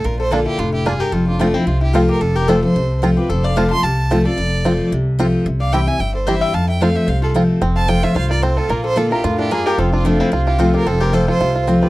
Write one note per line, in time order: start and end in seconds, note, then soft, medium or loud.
0.04 0.46 A#1 loud
0.04 0.56 A#2 loud
0.04 0.19 F4 medium
0.04 0.19 A#4 medium
0.19 0.31 A4 medium
0.19 0.33 C5 loud
0.31 0.57 D3 medium
0.31 0.57 A#3 loud
0.31 0.39 A#3 medium
0.31 0.58 D4 medium
0.31 0.39 D4 medium
0.31 0.45 F4 medium
0.31 0.58 F4 loud
0.31 0.39 F4 medium
0.31 0.46 A4 medium
0.46 0.58 E4 medium
0.46 0.60 G4 medium
0.58 1.00 F1 medium
0.58 0.85 A2 medium
0.58 0.72 D4 medium
0.58 0.73 F4 medium
0.73 0.86 E4 medium
0.73 0.87 G4 medium
0.86 1.12 G2 medium
0.86 0.92 A#3 medium
0.86 0.93 D4 medium
0.86 1.00 F4 medium
0.86 0.93 F4 medium
0.86 1.02 G#4 medium
1.00 1.13 G4 medium
1.00 1.14 A#4 loud
1.12 1.54 F1 medium
1.12 1.64 F2 medium
1.12 1.27 F4 medium
1.12 1.27 A4 medium
1.27 1.39 D4 medium
1.27 1.41 F4 medium
1.39 1.54 F3 loud
1.39 1.54 A3 medium
1.39 1.54 A3 loud
1.39 1.54 C4 loud
1.39 1.47 C4 medium
1.39 1.57 D4 medium
1.39 1.53 F4 loud
1.39 1.47 F4 medium
1.54 1.66 C4 medium
1.54 1.67 C4 soft
1.54 1.69 E4 medium
1.54 1.66 F4 medium
1.66 2.08 C2 medium
1.66 2.19 C3 medium
1.66 1.82 C4 medium
1.66 1.82 F4 medium
1.81 1.93 E4 medium
1.81 1.95 G4 medium
1.93 2.19 F3 medium
1.93 2.20 A3 medium
1.93 2.20 C4 loud
1.93 2.01 C4 medium
1.93 2.08 F4 medium
1.93 2.20 F4 loud
1.93 2.01 F4 medium
1.93 2.09 A4 medium
2.08 2.21 G4 loud
2.08 2.22 A#4 loud
2.21 2.62 F1 loud
2.21 2.73 F2 medium
2.21 2.36 F4 medium
2.21 2.37 A4 medium
2.36 2.48 G4 medium
2.36 2.50 A#4 loud
2.48 2.62 F3 loud
2.48 2.62 A3 medium
2.48 2.63 C4 loud
2.48 2.55 C4 medium
2.48 2.61 F4 loud
2.48 2.55 F4 medium
2.48 2.61 A4 medium
2.48 2.62 C5 medium
2.62 2.75 C4 soft
2.62 2.75 F4 medium
2.62 2.99 A4 medium
2.62 3.00 C5 medium
2.75 3.16 C2 medium
2.75 3.27 C3 medium
3.02 3.16 F3 medium
3.02 3.17 A3 medium
3.02 3.09 C4 medium
3.02 3.17 C4 medium
3.02 3.16 F4 loud
3.02 3.09 F4 medium
3.17 3.30 C4 soft
3.17 3.29 F4 medium
3.17 3.29 G4 medium
3.17 3.30 B4 medium
3.29 3.70 F1 loud
3.29 3.81 F2 medium
3.29 3.44 A4 medium
3.29 3.45 C5 medium
3.44 3.57 D5 medium
3.44 3.58 F5 loud
3.56 3.70 F3 medium
3.56 3.70 A3 loud
3.56 3.71 C4 loud
3.56 3.63 C4 medium
3.56 3.70 F4 loud
3.56 3.64 F4 medium
3.56 3.71 F5 medium
3.56 3.70 A5 medium
3.70 3.84 C4 soft
3.70 3.83 F4 medium
3.70 3.84 A5 medium
3.70 3.85 C6 loud
3.83 4.25 C2 medium
3.83 4.35 C3 medium
3.83 4.25 F5 medium
3.83 4.25 A5 loud
4.11 4.25 F3 medium
4.11 4.25 A3 medium
4.11 4.17 C4 medium
4.11 4.25 C4 loud
4.11 4.18 F4 medium
4.11 4.24 F4 loud
4.25 4.38 C4 soft
4.25 4.37 F4 medium
4.25 4.88 A4 medium
4.25 4.88 D5 loud
4.37 4.79 F1 medium
4.37 4.89 F2 medium
4.64 4.90 F3 medium
4.64 4.91 A3 medium
4.64 4.71 C4 medium
4.64 4.91 C4 loud
4.64 4.72 F4 medium
4.64 4.91 F4 loud
4.92 5.33 C2 medium
4.92 5.44 C3 medium
5.19 5.44 F3 loud
5.19 5.45 A3 loud
5.19 5.26 C4 medium
5.19 5.45 C4 loud
5.19 5.26 F4 medium
5.19 5.45 F4 loud
5.46 5.87 C2 loud
5.46 5.97 C3 medium
5.60 5.73 D5 medium
5.60 5.74 F5 medium
5.72 5.87 E3 loud
5.72 5.87 G3 loud
5.72 5.80 C4 medium
5.72 5.87 C4 loud
5.72 5.80 E4 medium
5.72 5.86 E4 loud
5.72 5.80 G4 medium
5.72 5.86 E5 medium
5.72 5.89 G5 medium
5.87 6.00 C4 medium
5.87 5.99 E4 medium
5.87 5.98 E5 medium
5.87 6.01 G#5 loud
5.99 6.41 G1 medium
5.99 6.51 G2 medium
5.99 6.14 E5 medium
5.99 6.14 G5 medium
6.15 6.27 A4 medium
6.15 6.28 C5 medium
6.26 6.53 E3 medium
6.26 6.53 G3 loud
6.26 6.34 C4 medium
6.26 6.53 C4 medium
6.26 6.34 E4 medium
6.26 6.53 E4 loud
6.26 6.34 G4 medium
6.26 6.41 C5 medium
6.26 6.43 E5 medium
6.41 6.53 E5 medium
6.41 6.56 G5 loud
6.53 6.95 F2 loud
6.53 7.05 F2 medium
6.53 6.68 F5 medium
6.53 6.69 A5 loud
6.68 6.81 E5 medium
6.68 6.83 G5 medium
6.81 7.07 F3 medium
6.81 7.07 A3 medium
6.81 6.88 C4 medium
6.81 7.07 C4 loud
6.81 6.88 F4 medium
6.81 7.07 F4 loud
6.81 6.94 C5 medium
6.81 6.97 F5 medium
6.95 7.06 C5 medium
6.95 7.10 E5 loud
7.07 7.48 C2 medium
7.07 7.59 C3 loud
7.07 7.22 C5 medium
7.07 7.22 F5 loud
7.22 7.34 F4 medium
7.22 7.30 A4 medium
7.34 7.60 F3 medium
7.34 7.61 A3 loud
7.34 7.61 C4 loud
7.34 7.42 C4 medium
7.34 7.42 F4 medium
7.34 7.61 F4 medium
7.61 8.03 F1 medium
7.61 8.13 F2 loud
7.61 8.01 C4 medium
7.76 7.88 F5 medium
7.76 7.90 A5 loud
7.88 8.14 F3 loud
7.88 8.14 A3 loud
7.88 8.15 C4 loud
7.88 8.03 F4 medium
7.88 8.15 F4 medium
7.88 8.02 C5 medium
7.88 8.05 G5 loud
8.03 8.16 F4 medium
8.03 8.13 C5 medium
8.03 8.17 E5 loud
8.15 8.57 C2 medium
8.15 8.42 G2 medium
8.15 8.31 F4 medium
8.15 8.30 C5 medium
8.15 8.30 F5 loud
8.29 8.58 F4 medium
8.29 8.42 A#4 medium
8.29 8.44 D5 medium
8.42 8.69 A2 medium
8.42 8.70 C4 medium
8.42 8.56 A4 medium
8.42 8.58 C5 medium
8.56 8.67 F4 medium
8.56 8.97 F4 medium
8.56 8.71 A4 loud
8.69 9.11 A#1 loud
8.69 9.21 A#2 medium
8.69 9.09 A#3 medium
8.69 8.84 F4 medium
8.69 8.84 A#4 medium
8.84 8.96 A4 medium
8.84 8.98 C5 loud
8.96 9.10 D3 loud
8.96 9.11 A#3 loud
8.96 9.11 D4 loud
8.96 9.10 F4 medium
8.96 9.24 F4 medium
8.96 9.10 F4 loud
8.96 9.11 A4 medium
9.11 9.24 D4 medium
9.11 9.24 E4 medium
9.11 9.23 F4 medium
9.11 9.25 G4 medium
9.11 9.49 A#4 medium
9.24 9.65 F2 medium
9.24 9.50 A2 loud
9.24 9.38 D4 medium
9.24 9.38 F4 medium
9.24 9.66 F4 medium
9.38 9.76 D4 medium
9.38 9.52 E4 medium
9.38 9.53 G4 medium
9.51 9.77 G2 loud
9.51 9.78 A#3 medium
9.51 9.66 F4 medium
9.51 9.67 G#4 loud
9.66 9.93 F4 medium
9.66 9.78 G4 loud
9.66 9.80 A#4 loud
9.78 10.19 F1 loud
9.78 10.30 F2 loud
9.78 10.59 C4 medium
9.78 9.92 F4 medium
9.78 9.93 A4 medium
9.93 10.04 D4 medium
9.93 10.07 F4 medium
9.93 10.06 F4 medium
10.05 10.31 F3 loud
10.05 10.20 A3 medium
10.05 10.31 A3 medium
10.05 10.31 C4 medium
10.05 10.22 D4 medium
10.05 10.31 F4 loud
10.05 10.20 F4 medium
10.20 10.31 C4 medium
10.20 10.34 E4 medium
10.20 10.33 F4 medium
10.32 10.73 C2 medium
10.32 10.83 C3 medium
10.32 10.47 C4 medium
10.32 10.47 F4 medium
10.47 10.58 E4 medium
10.47 10.74 F4 medium
10.47 10.61 G4 medium
10.58 10.85 F3 medium
10.58 10.85 A3 loud
10.58 10.85 C4 loud
10.58 10.86 C4 medium
10.58 10.73 F4 medium
10.58 10.85 F4 loud
10.58 10.74 A4 medium
10.74 11.01 F4 medium
10.74 10.85 G4 medium
10.74 10.88 A#4 loud
10.85 11.27 F1 loud
10.85 11.38 F2 medium
10.85 11.67 C4 medium
10.85 11.00 F4 medium
10.85 11.04 A4 medium
11.00 11.13 F4 medium
11.00 11.13 G4 medium
11.00 11.15 A#4 medium
11.13 11.39 F3 medium
11.13 11.39 A3 loud
11.13 11.39 C4 loud
11.13 11.28 F4 medium
11.13 11.40 F4 loud
11.13 11.27 A4 medium
11.13 11.28 C5 medium
11.28 11.40 F4 medium
11.28 11.65 A4 medium
11.28 11.65 C5 loud
11.40 11.81 C2 medium
11.40 11.89 C3 medium
11.40 11.55 F4 medium
11.55 11.83 F4 medium
11.67 11.89 F3 medium
11.67 11.89 A3 loud
11.67 11.89 C4 medium
11.67 11.89 C4 loud
11.67 11.89 F4 loud
11.82 11.89 F4 medium
11.82 11.89 G4 medium
11.82 11.89 B4 medium